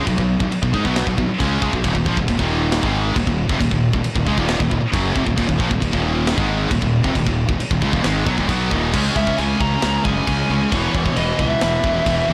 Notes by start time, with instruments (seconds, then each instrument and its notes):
0.07 fingered electric bass B1, distorted electric guitar B2 F#3, kick, crash
0.18 fingered electric bass B1, distorted electric guitar B2 F#3, kick
0.40 fingered electric bass B1, distorted electric guitar B2 F#3, kick
0.51 muted fingered electric bass stroke, muted distorted electric guitar stroke, crash
0.63 fingered electric bass B1, distorted electric guitar B2 F#3, kick
0.74 fingered electric bass G#2, distorted electric guitar G#3 D#4, kick
0.85 fingered electric bass B1, distorted electric guitar B2 F#3 B3, kick
0.96 snare, crash
1.07 fingered electric bass B1, distorted electric guitar B2 F#3, kick
1.18 fingered electric bass B1, distorted electric guitar B2 F#3, kick
1.29 muted fingered electric bass stroke, muted distorted electric guitar stroke
1.40 fingered electric bass C#2, distorted electric guitar C#3 G#3 C#4, kick, crash
1.62 fingered electric bass C#2, distorted electric guitar C#3 G#3, kick
1.73 fingered electric bass B1, distorted electric guitar B2 F#3, kick
1.84 fingered electric bass D#1, distorted electric guitar D#2 A#2, kick, crash
1.95 fingered electric bass D#1, distorted electric guitar D#2 A#2, kick
2.06 fingered electric bass A#1, distorted electric guitar A#2 F3, kick
2.17 fingered electric bass D#1, distorted electric guitar D#2 A#2, kick
2.28 fingered electric bass D#1, distorted electric guitar D#2 A#2, kick, crash
2.39 fingered electric bass D#1, distorted electric guitar D#2 A#2 D#3, kick
2.72 snare, crash
2.83 fingered electric bass G#1, distorted electric guitar G#2 D#3 G#3, kick
3.16 distorted electric guitar D#2 A#2, kick, crash
3.27 fingered electric bass D#1, distorted electric guitar D#2 A#2, kick
3.49 fingered electric bass F1, distorted electric guitar F2 C3, kick
3.60 fingered electric bass D#1, distorted electric guitar D#2 A#2, kick, crash
3.71 fingered electric bass D#1, distorted electric guitar D#2 A#2, kick
3.93 fingered electric bass D#1, distorted electric guitar D#2 A#2, kick
4.04 muted distorted electric guitar stroke, muted fingered electric bass stroke, crash
4.15 fingered electric bass D#1, distorted electric guitar D#2 A#2, kick
4.26 fingered electric bass C#2, distorted electric guitar C#3 G#3, kick
4.37 fingered electric bass D#1, distorted electric guitar D#2 A#2 D#3, kick
4.49 snare, crash
4.60 fingered electric bass D#1, distorted electric guitar D#2 A#2, kick
4.71 fingered electric bass D#1, distorted electric guitar D#2 A#2, kick
4.81 muted distorted electric guitar stroke, muted fingered electric bass stroke
4.92 fingered electric bass F#1, distorted electric guitar F#2 C#3 F#3, kick, crash
5.14 fingered electric bass F1, distorted electric guitar F2 C3, kick
5.26 fingered electric bass D#1, distorted electric guitar D#2 A#2, kick
5.38 fingered electric bass D#1, distorted electric guitar D#2 A#2, kick, crash
5.48 fingered electric bass D#1, distorted electric guitar D#2 A#2, kick
5.59 fingered electric bass A#1, distorted electric guitar A#2 F3, kick
5.70 fingered electric bass D#1, distorted electric guitar D#2 A#2, kick
5.81 fingered electric bass D#1, distorted electric guitar D#2 A#2, kick, crash
5.92 fingered electric bass D#1, distorted electric guitar D#2 A#2 D#3, kick
6.27 snare, crash
6.36 fingered electric bass G#1, distorted electric guitar G#2 D#3 G#3, kick
6.71 fingered electric bass D#1, distorted electric guitar D#2 A#2, kick, crash
6.82 fingered electric bass D#1, distorted electric guitar D#2 A#2, kick
7.04 fingered electric bass F1, distorted electric guitar F2 C3, kick
7.15 fingered electric bass D#1, distorted electric guitar D#2 A#2, kick, crash
7.27 fingered electric bass D#1, distorted electric guitar D#2 A#2, kick
7.49 fingered electric bass D#1, distorted electric guitar D#2 A#2, kick
7.60 muted fingered electric bass stroke, muted distorted electric guitar stroke, crash
7.71 fingered electric bass D#1, distorted electric guitar D#2 A#2, kick
7.81 fingered electric bass C#2, distorted electric guitar C#3 G#3, kick
7.93 fingered electric bass D#1, distorted electric guitar D#2 A#2, kick
8.03 fingered electric bass G#1, distorted electric guitar G#2 D#3 G#3, snare, crash
8.26 fingered electric bass B1, distorted electric guitar B2 F#3, kick
8.37 fingered electric bass D#1, distorted electric guitar D#2 A#2, kick
8.49 fingered electric bass B1, distorted electric guitar B2 F#3 B3, kick, crash
8.71 fingered electric bass D#1, distorted electric guitar D#2 A#2 D#3, kick
8.93 fingered electric bass C#2, distorted electric guitar C#3 G#3 C#4, kick, crash
9.16 fingered electric bass C#2, distorted electric guitar C#3 G#3 C#4, lead electric guitar E5, kick
9.26 distorted electric guitar C#3 G#3, kick
9.37 fingered electric bass C#2, distorted electric guitar C#3 G#3 C#4, lead electric guitar G#5, crash
9.60 fingered electric bass C#2, distorted electric guitar C#3 G#3 C#4, lead electric guitar A#5, kick
9.71 distorted electric guitar C#3 G#3
9.82 fingered electric bass C#2, distorted electric guitar C#3 G#3 C#4, snare, crash
10.04 fingered electric bass F#1, distorted electric guitar C#3 G#3 C#4, lead electric guitar G#5, kick
10.17 distorted electric guitar C#3 G#3
10.27 fingered electric bass C#2, distorted electric guitar C#3 G#3 C#4, kick, crash
10.50 fingered electric bass C#2, distorted electric guitar C#3 G#3 C#4
10.61 distorted electric guitar C#3 G#3
10.72 fingered electric bass E1, distorted electric guitar E2 B2 E3, lead electric guitar C#5, kick, crash
10.94 fingered electric bass E1, distorted electric guitar E2 B2 E3, kick
11.06 distorted electric guitar E2 B2, kick
11.16 fingered electric bass E1, distorted electric guitar E2 B2 E3, lead electric guitar D#5, crash
11.39 fingered electric bass C#2, distorted electric guitar E2 B2 E3, lead electric guitar E5, kick
11.50 distorted electric guitar E2 B2
11.61 fingered electric bass E1, distorted electric guitar E2 B2 E3, snare, crash
11.83 fingered electric bass E1, distorted electric guitar E2 B2 E3, kick
11.95 distorted electric guitar E2 B2
12.06 fingered electric bass E1, distorted electric guitar E2 B2 E3, kick, crash
12.28 distorted electric guitar E2 B2 E3, fingered electric bass E2